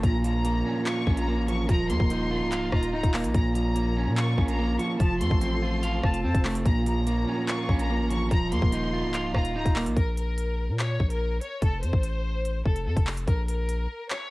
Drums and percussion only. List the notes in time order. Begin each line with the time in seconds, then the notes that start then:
0.03 kick, closed hi-hat
0.24 closed hi-hat
0.45 closed hi-hat
0.86 clap, closed hi-hat
1.07 kick
1.17 closed hi-hat
1.48 closed hi-hat
1.69 kick, closed hi-hat
1.90 closed hi-hat
2.00 kick
2.10 closed hi-hat
2.52 clap, closed hi-hat
2.72 kick, cross-stick
2.83 closed hi-hat
3.03 kick, closed hi-hat
3.14 clap, open hi-hat
3.24 closed hi-hat
3.34 kick, closed hi-hat
3.55 closed hi-hat
3.76 closed hi-hat
4.17 clap, closed hi-hat
4.38 kick
4.48 closed hi-hat
4.79 closed hi-hat
5.00 kick, closed hi-hat
5.21 closed hi-hat
5.31 kick
5.41 closed hi-hat
5.83 closed hi-hat
6.03 kick, cross-stick
6.14 closed hi-hat
6.34 kick, closed hi-hat
6.45 clap, open hi-hat
6.55 closed hi-hat
6.66 kick, closed hi-hat
6.86 closed hi-hat
7.07 closed hi-hat
7.48 clap, closed hi-hat
7.69 kick
7.79 closed hi-hat
8.10 closed hi-hat
8.31 kick, closed hi-hat
8.52 closed hi-hat
8.62 kick
8.72 closed hi-hat
9.14 clap, closed hi-hat
9.34 kick, cross-stick
9.45 closed hi-hat
9.66 kick, closed hi-hat
9.76 clap, open hi-hat
9.86 closed hi-hat
9.97 kick, closed hi-hat
10.17 closed hi-hat
10.38 closed hi-hat
10.79 clap, closed hi-hat
11.00 kick
11.10 closed hi-hat
11.41 closed hi-hat
11.62 kick, closed hi-hat
11.83 closed hi-hat
11.93 kick
12.03 closed hi-hat
12.45 closed hi-hat
12.66 kick
12.76 closed hi-hat
12.97 kick, closed hi-hat
13.07 clap, open hi-hat
13.17 closed hi-hat
13.28 kick, closed hi-hat
13.48 closed hi-hat
13.69 closed hi-hat
14.10 clap, closed hi-hat